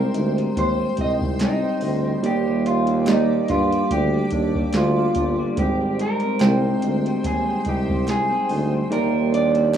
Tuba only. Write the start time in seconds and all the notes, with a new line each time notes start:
0.15 D2
0.56 D#2
0.98 C2
1.81 D2
2.23 D#2
3.50 G2
3.91 D2
4.32 D#2
4.74 D2
5.16 G1
5.57 G#1
6.41 C2
6.83 D2
7.24 D#2
7.66 C2
8.50 D2
8.91 D#2